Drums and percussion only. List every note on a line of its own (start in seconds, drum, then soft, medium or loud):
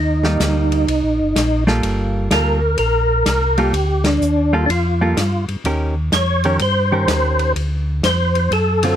0.23 snare soft
0.40 snare medium
0.40 hi-hat pedal medium
0.40 ride medium
0.72 ride soft
0.88 ride medium
1.36 snare medium
1.36 hi-hat pedal soft
1.36 ride medium
1.67 snare medium
1.83 ride soft
2.31 snare medium
2.31 hi-hat pedal soft
2.31 ride medium
2.78 ride medium
3.26 snare medium
3.26 hi-hat pedal medium
3.26 ride medium
3.57 ride soft
3.74 ride medium
4.04 snare medium
4.04 ride medium
4.22 hi-hat pedal medium
4.70 ride medium
5.17 snare medium
5.17 hi-hat pedal medium
5.17 ride medium
5.48 ride soft
5.65 ride medium
6.12 snare medium
6.12 hi-hat pedal medium
6.12 ride medium
6.44 ride soft
6.59 ride medium
7.08 snare medium
7.08 hi-hat pedal medium
7.08 ride medium
7.39 ride soft
7.56 ride medium
8.03 snare medium
8.03 hi-hat pedal soft
8.03 ride medium
8.35 ride soft
8.52 ride medium
8.83 ride medium